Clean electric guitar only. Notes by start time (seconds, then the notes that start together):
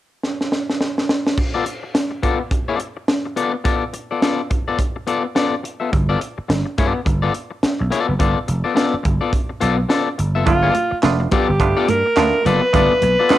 1.38 muted clean electric guitar stroke
1.54 B3 F4 A4 D5
1.66 muted clean electric guitar stroke
1.83 muted clean electric guitar stroke
1.94 muted clean electric guitar stroke
2.11 muted clean electric guitar stroke
2.22 B3 F4 A4 D5
2.40 muted clean electric guitar stroke
2.51 muted clean electric guitar stroke
2.68 B3 F4 A4 D5
2.79 muted clean electric guitar stroke
2.97 muted clean electric guitar stroke
3.25 muted clean electric guitar stroke
3.36 B3 F4 A4 D5
3.54 muted clean electric guitar stroke
3.64 B3 F4 A4 D5
3.93 muted clean electric guitar stroke
4.11 B3 F4 A4 D5
4.22 B3 F4 A4 D5
4.50 muted clean electric guitar stroke
4.68 B3 F4 A4 D5
4.79 muted clean electric guitar stroke
4.96 muted clean electric guitar stroke
5.07 B3 F4 A4 D5
5.24 muted clean electric guitar stroke
5.35 B3 F4 A4 D5
5.63 muted clean electric guitar stroke
5.80 B3 F4 A4 E5
5.92 muted clean electric guitar stroke
6.09 B3 F4 A4 D5
6.20 muted clean electric guitar stroke
6.38 muted clean electric guitar stroke
6.48 muted clean electric guitar stroke
6.66 muted clean electric guitar stroke
6.78 B3 F4 A4 D5
6.94 muted clean electric guitar stroke
7.05 muted clean electric guitar stroke
7.22 B3 F4 A4 D5
7.34 muted clean electric guitar stroke
7.51 muted clean electric guitar stroke
7.79 muted clean electric guitar stroke
7.91 B3 F4 A4 D5
8.08 muted clean electric guitar stroke
8.19 B3 F4 A4 D5
8.48 muted clean electric guitar stroke
8.64 B3 F4 A4 D5
8.75 B3 F4 A4 D5
9.03 muted clean electric guitar stroke
9.21 B3 F4 A4 D5
9.49 muted clean electric guitar stroke
9.61 B3 F4 A4 D5
9.78 muted clean electric guitar stroke
9.89 B3 F4 A4 D5
10.18 muted clean electric guitar stroke
10.35 B3 F4 A4 E5
10.63 B3 F4 A4 D5
10.74 muted clean electric guitar stroke
10.91 muted clean electric guitar stroke
11.03 muted clean electric guitar stroke
11.20 muted clean electric guitar stroke
11.32 B3 F4 A4 D5
11.49 muted clean electric guitar stroke
11.61 muted clean electric guitar stroke
11.77 B3 F4 A4 D5
11.89 muted clean electric guitar stroke
12.06 muted clean electric guitar stroke
12.34 muted clean electric guitar stroke
12.45 B3 F4 A4 D5
12.62 muted clean electric guitar stroke
12.74 B3 F4 A4 D5
13.02 muted clean electric guitar stroke
13.19 B3 F4 A4 D5
13.30 B3 F4 A4 D5